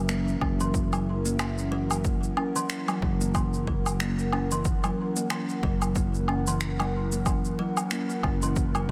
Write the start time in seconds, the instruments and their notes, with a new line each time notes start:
Already playing: fretless electric bass F#1, analog synth pad E3 C#4 F#4 A#4 E5
0.01 analog synth pad E4
0.09 kalimba A#3, finger snap, shaker
0.28 shaker
0.41 fretless electric bass F#1, kalimba C#4, kick, low woodblock
0.60 kalimba E3, shaker
0.74 kick, shaker
0.93 kalimba F#3, low woodblock, shaker
1.23 kalimba A#3, analog synth pad F#5, shaker
1.39 kalimba E3, finger snap, low woodblock, shaker
1.58 shaker
1.72 kalimba F#3
1.91 low woodblock, shaker
2.05 kalimba A#3, kick, shaker
2.23 shaker
2.37 kalimba C#4, low woodblock
2.56 kalimba E3, shaker
2.70 finger snap, shaker
2.88 kalimba F#3, low woodblock, shaker
3.02 fretless electric bass F#1, kick
3.21 kalimba A#3, shaker
3.35 kalimba E3, kick, low woodblock, shaker
3.54 shaker
3.67 kalimba F#3, kick
3.86 low woodblock, shaker
4.00 kalimba A#3, finger snap, shaker
4.19 shaker
4.32 kalimba C#4, low woodblock
4.51 kalimba E3, shaker
4.65 kick, shaker
4.84 kalimba F#3, low woodblock, shaker
5.16 kalimba A#3, shaker
5.30 kalimba E3, finger snap, low woodblock, shaker
5.49 shaker
5.63 fretless electric bass F#1, kalimba F#3, kick
5.82 low woodblock, shaker
5.96 kalimba A#3, kick, shaker
6.15 shaker
6.28 kalimba C#4, low woodblock
6.47 kalimba E3, shaker
6.61 finger snap, shaker
6.80 kalimba F#3, low woodblock, shaker
7.12 kalimba A#3, shaker
7.26 kalimba E3, kick, low woodblock, shaker
7.45 shaker
7.59 kalimba F#3
7.77 low woodblock, shaker
7.91 kalimba A#3, finger snap, shaker
8.10 shaker
8.23 fretless electric bass F#1, kalimba C#4, kick, low woodblock
8.42 kalimba E3, shaker
8.56 kick, shaker
8.75 kalimba F#3, low woodblock, shaker